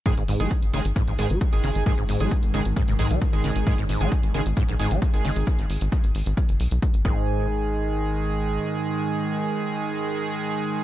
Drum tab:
HH |xxoxxxoxxxoxxxox|xxoxxxoxxxoxxxox|xxoxxxoxxxoxxxox|xxoxxxoxxxoxxx--|
BD |o---o---o---o---|o---o---o---o---|o---o---o---o---|o---o---o---o-o-|

HH |----------------|----------------|
BD |----------------|----------------|